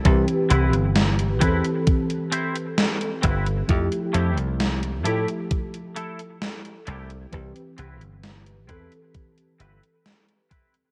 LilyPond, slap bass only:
\new Staff \with { instrumentName = "Slap bass" } { \clef bass \time 4/4 \key c \major \tempo 4 = 66 c,16 r16 c,16 g,,8. e,16 r4. r16 g,,8 | f,16 r16 f,16 c,8. a,16 r4. r16 c,8 | c,16 r16 c,16 g,,8. e,16 r8. g,,16 r4 r16 | }